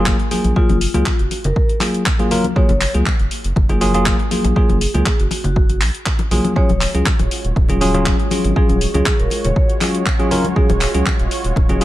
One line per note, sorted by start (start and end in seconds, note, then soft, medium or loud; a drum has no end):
0.00 0.13 F#1 medium
0.00 0.16 F#3 medium
0.00 0.16 A#3 medium
0.00 0.16 F4 medium
0.00 0.16 G#4 medium
0.06 kick loud
0.06 clap loud
0.06 muted conga medium
0.19 closed hi-hat soft
0.31 0.53 F#3 medium
0.31 0.53 A#3 medium
0.31 0.53 F4 medium
0.31 0.54 G#4 medium
0.31 open hi-hat medium
0.31 high conga medium
0.44 0.53 A#1 loud
0.44 closed hi-hat medium
0.44 muted conga medium
0.56 0.78 F#3 medium
0.56 0.78 A#3 medium
0.56 0.90 F4 medium
0.56 0.78 F4 medium
0.56 0.78 G#4 medium
0.56 kick loud
0.69 0.86 F#1 loud
0.69 closed hi-hat soft
0.69 high conga loud
0.81 open hi-hat loud
0.94 1.03 C#2 medium
0.94 1.07 F#3 medium
0.94 1.07 A#3 medium
0.94 1.16 F4 medium
0.94 1.07 F4 medium
0.94 1.07 G#4 medium
0.94 closed hi-hat medium
0.94 muted conga medium
0.94 low conga medium
1.06 kick loud
1.06 clap loud
1.19 1.28 F#1 medium
1.19 1.41 F#4 medium
1.19 closed hi-hat medium
1.31 open hi-hat medium
1.31 muted conga medium
1.44 1.53 F#1 medium
1.44 1.77 A#4 medium
1.44 closed hi-hat medium
1.44 low conga loud
1.56 kick loud
1.69 closed hi-hat medium
1.80 2.03 F#3 medium
1.80 2.03 A#3 medium
1.80 2.03 F4 medium
1.80 2.03 G#4 medium
1.80 clap medium
1.80 open hi-hat loud
1.80 muted conga medium
1.94 closed hi-hat medium
2.06 kick loud
2.06 clap loud
2.19 2.29 F#3 medium
2.19 2.29 A#3 medium
2.19 2.29 F4 medium
2.19 2.30 G#4 loud
2.19 closed hi-hat soft
2.19 muted conga soft
2.31 2.45 F#3 loud
2.31 2.45 A#3 medium
2.31 2.45 F4 medium
2.31 2.45 A#4 loud
2.31 open hi-hat loud
2.31 low conga medium
2.44 closed hi-hat medium
2.44 high conga medium
2.56 2.70 F#3 medium
2.56 2.70 A#3 medium
2.56 2.70 F4 medium
2.56 2.70 G#4 loud
2.56 2.90 C#5 loud
2.56 kick loud
2.69 2.86 F#1 loud
2.69 closed hi-hat soft
2.69 muted conga medium
2.69 high conga medium
2.81 clap medium
2.81 open hi-hat loud
2.94 3.03 C#2 medium
2.94 3.07 F#3 medium
2.94 3.07 A#3 medium
2.94 3.07 F4 medium
2.94 3.07 G#4 medium
2.94 closed hi-hat medium
3.06 kick loud
3.06 clap loud
3.06 muted conga medium
3.19 3.28 F#1 medium
3.19 closed hi-hat soft
3.31 open hi-hat medium
3.44 3.53 F#1 medium
3.44 closed hi-hat medium
3.56 4.13 F#1 medium
3.56 kick loud
3.56 muted conga medium
3.69 3.79 F#3 medium
3.69 3.79 A#3 medium
3.69 3.79 F4 medium
3.69 3.80 G#4 medium
3.69 closed hi-hat soft
3.69 low conga loud
3.81 3.92 F#3 loud
3.81 3.92 A#3 medium
3.81 3.93 F4 medium
3.81 3.93 G#4 loud
3.81 open hi-hat loud
3.81 high conga medium
3.94 4.15 F#3 medium
3.94 4.16 A#3 medium
3.94 4.16 F4 medium
3.94 4.16 G#4 loud
3.94 closed hi-hat medium
3.94 muted conga soft
3.94 low conga medium
4.06 kick loud
4.06 clap loud
4.19 closed hi-hat soft
4.31 4.53 F#3 medium
4.31 4.53 A#3 medium
4.31 4.53 F4 medium
4.31 4.53 G#4 medium
4.31 open hi-hat loud
4.31 high conga medium
4.44 4.53 A#1 loud
4.44 closed hi-hat medium
4.44 muted conga medium
4.56 4.78 F#3 medium
4.56 4.78 A#3 medium
4.56 4.78 F4 medium
4.56 4.90 G#4 loud
4.56 4.78 G#4 medium
4.56 kick loud
4.69 4.86 F#1 loud
4.69 closed hi-hat soft
4.69 high conga medium
4.81 open hi-hat loud
4.81 muted conga soft
4.94 5.03 C#2 medium
4.94 5.07 F#3 medium
4.94 5.07 A#3 medium
4.94 5.07 F4 medium
4.94 5.16 G#4 medium
4.94 5.07 G#4 medium
4.94 closed hi-hat medium
4.94 low conga medium
5.06 kick loud
5.06 clap loud
5.19 5.27 F#1 medium
5.19 5.41 F#4 medium
5.19 closed hi-hat medium
5.31 open hi-hat loud
5.31 muted conga medium
5.44 5.83 F#1 medium
5.44 5.77 F#4 medium
5.44 closed hi-hat medium
5.44 low conga medium
5.56 kick loud
5.70 closed hi-hat medium
5.70 muted conga soft
5.81 5.90 A#1 medium
5.81 clap medium
5.81 open hi-hat loud
5.95 closed hi-hat medium
6.06 kick loud
6.06 clap loud
6.19 closed hi-hat soft
6.19 muted conga medium
6.31 6.40 A#1 medium
6.31 6.53 F#3 loud
6.31 6.53 A#3 medium
6.31 6.53 F4 medium
6.31 6.53 G#4 loud
6.31 open hi-hat loud
6.31 low conga medium
6.44 closed hi-hat medium
6.44 high conga medium
6.56 6.70 F#3 loud
6.56 11.84 G#3 medium
6.56 6.70 C#4 medium
6.56 11.84 F4 medium
6.56 6.70 F4 medium
6.56 11.84 F#4 medium
6.56 6.70 G#4 loud
6.56 11.84 C#5 medium
6.56 6.90 C#5 loud
6.56 kick loud
6.69 6.86 D#1 loud
6.69 closed hi-hat soft
6.69 muted conga soft
6.69 high conga medium
6.81 clap medium
6.81 open hi-hat loud
6.94 7.03 C#2 medium
6.94 7.07 F#3 medium
6.94 7.07 C#4 medium
6.94 7.07 F4 medium
6.94 7.07 G#4 medium
6.94 closed hi-hat medium
7.06 kick loud
7.06 clap loud
7.19 7.28 D#1 medium
7.19 closed hi-hat soft
7.19 muted conga medium
7.31 open hi-hat medium
7.45 7.53 D#1 medium
7.45 closed hi-hat medium
7.56 8.13 D#1 medium
7.56 kick loud
7.56 muted conga medium
7.69 7.79 F#3 medium
7.69 7.79 C#4 medium
7.69 7.79 F4 medium
7.69 7.80 G#4 medium
7.69 closed hi-hat medium
7.69 low conga medium
7.81 7.92 F#3 medium
7.81 7.92 C#4 medium
7.81 7.93 F4 medium
7.81 7.93 G#4 loud
7.81 open hi-hat loud
7.81 high conga medium
7.94 8.15 F#3 medium
7.94 8.16 C#4 medium
7.94 8.16 F4 medium
7.94 8.16 G#4 loud
7.94 closed hi-hat medium
7.94 low conga medium
8.06 kick loud
8.06 clap loud
8.06 muted conga medium
8.19 closed hi-hat soft
8.31 8.53 F#3 medium
8.31 8.53 C#4 medium
8.31 8.53 F4 medium
8.31 8.54 G#4 medium
8.31 open hi-hat loud
8.31 high conga medium
8.44 8.53 G#1 loud
8.44 closed hi-hat medium
8.44 muted conga soft
8.56 8.78 F#3 medium
8.56 8.78 C#4 medium
8.56 8.78 F4 medium
8.56 8.90 G#4 medium
8.56 8.78 G#4 medium
8.56 kick loud
8.69 8.86 D#1 loud
8.69 closed hi-hat soft
8.69 high conga medium
8.81 open hi-hat loud
8.94 9.03 C#2 medium
8.94 9.07 F#3 medium
8.94 9.07 C#4 medium
8.94 9.07 F4 medium
8.94 9.16 G#4 medium
8.94 9.07 G#4 medium
8.94 closed hi-hat medium
8.94 muted conga medium
8.94 low conga medium
9.06 kick loud
9.06 clap loud
9.19 9.28 D#1 medium
9.19 9.41 A#4 medium
9.19 closed hi-hat medium
9.30 open hi-hat medium
9.30 muted conga soft
9.44 9.53 D#1 medium
9.44 9.77 C#5 medium
9.44 closed hi-hat medium
9.44 low conga medium
9.56 kick loud
9.70 closed hi-hat medium
9.81 10.03 F#3 medium
9.81 10.03 C#4 medium
9.81 10.03 F4 medium
9.81 10.03 G#4 medium
9.81 clap medium
9.81 open hi-hat loud
9.81 muted conga medium
9.95 closed hi-hat medium
10.06 kick loud
10.06 clap loud
10.19 10.29 F#3 medium
10.19 10.29 C#4 medium
10.19 10.29 F4 medium
10.19 10.30 G#4 loud
10.19 closed hi-hat soft
10.19 muted conga soft
10.31 10.45 F#3 loud
10.31 10.45 C#4 medium
10.31 10.45 F4 medium
10.31 10.45 A#4 loud
10.31 open hi-hat medium
10.31 low conga medium
10.44 closed hi-hat medium
10.44 high conga medium
10.56 10.70 F#3 medium
10.56 10.70 C#4 medium
10.56 10.70 F4 medium
10.56 10.90 G#4 loud
10.56 10.70 G#4 loud
10.56 kick loud
10.69 10.86 D#1 loud
10.69 closed hi-hat soft
10.69 muted conga medium
10.69 high conga medium
10.81 clap medium
10.81 open hi-hat loud
10.94 11.03 C#2 medium
10.94 11.07 F#3 medium
10.94 11.07 C#4 medium
10.94 11.07 F4 medium
10.94 11.07 G#4 medium
10.94 closed hi-hat medium
11.06 kick loud
11.06 clap loud
11.06 muted conga medium
11.19 11.28 D#1 medium
11.19 closed hi-hat medium
11.31 open hi-hat medium
11.44 11.53 D#1 medium
11.44 closed hi-hat medium
11.56 11.84 D#1 medium
11.56 kick loud
11.56 muted conga medium
11.69 11.79 F#3 medium
11.69 11.79 C#4 medium
11.69 11.79 F4 medium
11.69 11.80 G#4 medium
11.69 closed hi-hat medium
11.69 low conga medium
11.81 11.84 F#3 loud
11.81 11.84 C#4 medium
11.81 11.84 F4 medium
11.81 open hi-hat medium